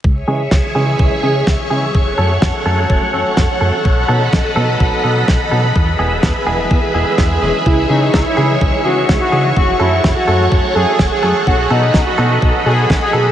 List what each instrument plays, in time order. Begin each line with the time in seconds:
0.04 analog synth bass C#2, string machine G#4 C#5 E5 C#6, kick
0.28 analog synth bass C#3, clean electric guitar E3 G#3 C#4 G#4
0.51 analog synth bass C#2, kick, snare
0.75 analog synth bass C#3, clean electric guitar E3 G#3 C#4 G#4
0.99 analog synth bass C#2, kick
1.23 analog synth bass C#3, clean electric guitar E3 G#3 C#4 G#4
1.47 analog synth bass C#2, kick, snare
1.70 analog synth bass C#3, clean electric guitar E3 G#3 C#4 G#4
1.94 analog synth bass F#1, string machine A4 F#5, kick
2.18 analog synth bass F#2, clean electric guitar F#3 A3 C#4 A4
2.42 analog synth bass F#1, kick, snare
2.66 analog synth bass F#2, clean electric guitar F#3 A3 C#4 A4
2.90 analog synth bass F#1, kick
3.13 analog synth bass F#2, clean electric guitar F#3 A3 C#4 A4
3.37 analog synth bass F#1, kick, snare
3.61 analog synth bass F#2, clean electric guitar F#3 A3 C#4 A4
3.85 analog synth bass B1, string machine D#5 B5, kick
4.08 analog synth bass B2, clean electric guitar F#3 B3 D#4 A4
4.33 analog synth bass B1, kick, snare
4.56 analog synth bass B2, clean electric guitar F#3 B3 D#4 A4
4.80 analog synth bass B1, kick
5.04 analog synth bass B2, clean electric guitar F#3 B3 D#4 A4
5.28 analog synth bass B1, kick, snare
5.51 analog synth bass B2, clean electric guitar F#3 B3 D#4 A4
5.76 analog synth bass E2, string machine G#4 B4 E5, kick
5.99 analog synth bass E1, clean electric guitar E3 G#3 B3 G#4
6.23 analog synth bass E2, kick, snare
6.47 analog synth bass E1, clean electric guitar E3 G#3 B3 G#4
6.71 analog synth bass E2, kick
6.94 analog synth bass E1, clean electric guitar E3 G#3 B3 G#4
7.06 clean electric guitar E3 G#3 B3 G#4
7.18 analog synth bass E2, kick, snare
7.42 analog synth bass E1, clean electric guitar E3 G#3 C#4 G#4
7.66 analog synth bass C#2, analog polysynth E4, string machine C#5 C#6, kick
7.89 analog synth bass C#3, clean electric guitar E3 G#3 C#4 G#4, analog polysynth D#4
8.14 analog synth bass C#2, kick, snare
8.26 analog polysynth E4
8.37 analog synth bass C#3, clean electric guitar E3 G#3 C#4 G#4
8.61 analog synth bass C#2, kick
8.85 analog synth bass C#3, clean electric guitar E3 G#3 C#4 G#4, analog polysynth F#4
9.09 analog synth bass C#2, kick, snare
9.21 analog polysynth F#4
9.32 analog synth bass C#3, clean electric guitar E3 G#3 C#4 G#4
9.56 analog synth bass F#1, analog polysynth F#4, string machine A4 C#5 F#5, kick
9.80 analog synth bass F#2, clean electric guitar F#3 A3 C#4 A4, analog polysynth E4
10.04 analog synth bass F#1, kick, snare
10.16 analog polysynth F#4
10.28 analog synth bass F#2, clean electric guitar F#3 A3 C#4 A4
10.52 analog synth bass F#1, kick
10.75 analog synth bass F#2, clean electric guitar F#3 A3 C#4 A4, analog polysynth G#4
10.99 analog synth bass F#1, kick, snare
11.11 analog polysynth G#4
11.23 analog synth bass F#2, clean electric guitar F#3 A3 C#4 A4
11.47 analog synth bass B1, analog polysynth F#4, string machine D#5 B5, kick
11.70 analog synth bass B2, clean electric guitar F#3 B3 D#4 A4, analog polysynth D#4
11.94 analog synth bass B1, kick, snare
12.07 analog polysynth F#4
12.18 analog synth bass B2, clean electric guitar F#3 B3 D#4 A4
12.42 analog synth bass B1, kick
12.66 analog synth bass B2, clean electric guitar F#3 B3 D#4 A4, analog polysynth G#4
12.90 analog synth bass B1, kick, snare
13.02 analog polysynth G#4
13.13 analog synth bass B2, clean electric guitar F#3 B3 D#4 A4